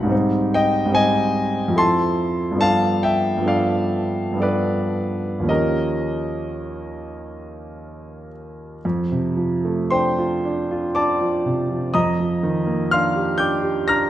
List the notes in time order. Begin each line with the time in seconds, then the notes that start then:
Already playing: B1 F#3 B3 D#4 A#4 F#5 B5
0.03 G#2 G3
0.07 C4 D#4 C5
0.54 D#5 G5
0.85 G#2 G3
0.89 C4 D#4 C5
0.95 D#5 G#5
1.68 F2 F3 C4
1.74 E4 A4 C6
1.78 A5
2.51 G2 F3
2.56 B3 D4 A4
2.61 F5 A5
3.03 E5 G5
3.37 G2 F3
3.42 B3 D4 A4
3.48 D5 F5
4.33 G2 F3 B3
4.38 D4 A4 D5
4.43 B4
5.40 D#2 F3 A#3
5.46 C#4 G4 A#4 D#5
8.85 F2
9.12 C3
9.37 F3
9.65 A3
9.90 D4 C5 G5 C6
10.18 F4
10.45 D4
10.71 F4
10.95 D4 D5 A5 D6
11.21 F3
11.46 C3
11.71 F3
11.94 F2 D#5 A#5 D#6
12.19 F3
12.43 D#3
12.67 A#3
12.91 D4 F5 C6 F6
13.16 G4
13.38 D4 G5 D6 G6
13.63 G4
13.88 D4 A#5 F6 A#6